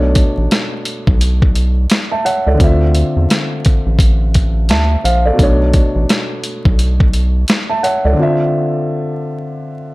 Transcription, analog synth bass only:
0, 0, Header, 1, 2, 480
1, 0, Start_track
1, 0, Key_signature, 2, "minor"
1, 0, Tempo, 697674
1, 1790, Time_signature, 4, 2, 24, 8
1, 6842, End_track
2, 0, Start_track
2, 0, Title_t, "Analog synth bass"
2, 0, Program_c, 0, 38
2, 0, Note_on_c, 0, 35, 109
2, 170, Note_off_c, 0, 35, 0
2, 258, Note_on_c, 0, 33, 90
2, 330, Note_off_c, 0, 33, 0
2, 738, Note_on_c, 0, 35, 97
2, 1283, Note_off_c, 0, 35, 0
2, 1697, Note_on_c, 0, 37, 96
2, 1769, Note_off_c, 0, 37, 0
2, 1789, Note_on_c, 0, 38, 104
2, 2090, Note_off_c, 0, 38, 0
2, 2177, Note_on_c, 0, 40, 88
2, 2249, Note_off_c, 0, 40, 0
2, 2656, Note_on_c, 0, 33, 84
2, 3229, Note_on_c, 0, 38, 98
2, 3240, Note_off_c, 0, 33, 0
2, 3416, Note_off_c, 0, 38, 0
2, 3469, Note_on_c, 0, 34, 97
2, 3656, Note_off_c, 0, 34, 0
2, 3709, Note_on_c, 0, 35, 109
2, 4010, Note_off_c, 0, 35, 0
2, 4096, Note_on_c, 0, 33, 96
2, 4168, Note_off_c, 0, 33, 0
2, 4578, Note_on_c, 0, 35, 91
2, 5123, Note_off_c, 0, 35, 0
2, 5537, Note_on_c, 0, 37, 94
2, 5609, Note_off_c, 0, 37, 0
2, 6842, End_track
0, 0, End_of_file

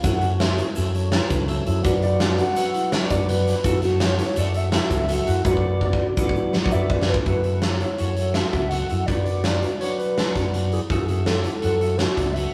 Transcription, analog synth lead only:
0, 0, Header, 1, 2, 480
1, 0, Start_track
1, 0, Key_signature, 3, "minor"
1, 0, Tempo, 361882
1, 61, Time_signature, 5, 2, 24, 8
1, 16630, End_track
2, 0, Start_track
2, 0, Title_t, "Analog synth lead"
2, 0, Program_c, 0, 81
2, 49, Note_on_c, 0, 78, 107
2, 526, Note_off_c, 0, 78, 0
2, 533, Note_on_c, 0, 76, 78
2, 981, Note_off_c, 0, 76, 0
2, 2693, Note_on_c, 0, 74, 104
2, 3163, Note_on_c, 0, 78, 118
2, 3183, Note_off_c, 0, 74, 0
2, 3876, Note_off_c, 0, 78, 0
2, 3884, Note_on_c, 0, 76, 102
2, 3993, Note_off_c, 0, 76, 0
2, 4124, Note_on_c, 0, 74, 98
2, 4351, Note_on_c, 0, 71, 102
2, 4371, Note_off_c, 0, 74, 0
2, 5077, Note_off_c, 0, 71, 0
2, 5326, Note_on_c, 0, 73, 95
2, 5811, Note_on_c, 0, 74, 98
2, 5831, Note_off_c, 0, 73, 0
2, 6060, Note_on_c, 0, 76, 96
2, 6079, Note_off_c, 0, 74, 0
2, 7257, Note_on_c, 0, 74, 101
2, 7277, Note_off_c, 0, 76, 0
2, 7730, Note_off_c, 0, 74, 0
2, 7758, Note_on_c, 0, 74, 85
2, 8411, Note_off_c, 0, 74, 0
2, 8913, Note_on_c, 0, 76, 113
2, 9162, Note_on_c, 0, 74, 100
2, 9182, Note_off_c, 0, 76, 0
2, 9403, Note_off_c, 0, 74, 0
2, 9415, Note_on_c, 0, 71, 82
2, 9520, Note_off_c, 0, 71, 0
2, 9641, Note_on_c, 0, 71, 81
2, 9866, Note_off_c, 0, 71, 0
2, 9876, Note_on_c, 0, 71, 81
2, 10104, Note_on_c, 0, 73, 76
2, 10124, Note_off_c, 0, 71, 0
2, 10577, Note_off_c, 0, 73, 0
2, 10585, Note_on_c, 0, 73, 93
2, 11060, Note_on_c, 0, 76, 91
2, 11080, Note_off_c, 0, 73, 0
2, 11288, Note_off_c, 0, 76, 0
2, 11296, Note_on_c, 0, 76, 101
2, 11524, Note_off_c, 0, 76, 0
2, 11532, Note_on_c, 0, 78, 102
2, 12017, Note_on_c, 0, 74, 95
2, 12037, Note_off_c, 0, 78, 0
2, 12258, Note_off_c, 0, 74, 0
2, 12266, Note_on_c, 0, 74, 107
2, 12949, Note_off_c, 0, 74, 0
2, 13001, Note_on_c, 0, 73, 89
2, 13231, Note_off_c, 0, 73, 0
2, 13239, Note_on_c, 0, 71, 70
2, 13693, Note_off_c, 0, 71, 0
2, 14232, Note_on_c, 0, 68, 71
2, 14337, Note_off_c, 0, 68, 0
2, 14458, Note_on_c, 0, 68, 87
2, 14905, Note_off_c, 0, 68, 0
2, 14941, Note_on_c, 0, 69, 83
2, 15388, Note_off_c, 0, 69, 0
2, 15398, Note_on_c, 0, 69, 87
2, 15885, Note_on_c, 0, 73, 95
2, 15905, Note_off_c, 0, 69, 0
2, 16110, Note_on_c, 0, 74, 97
2, 16130, Note_off_c, 0, 73, 0
2, 16357, Note_on_c, 0, 76, 104
2, 16377, Note_off_c, 0, 74, 0
2, 16630, Note_off_c, 0, 76, 0
2, 16630, End_track
0, 0, End_of_file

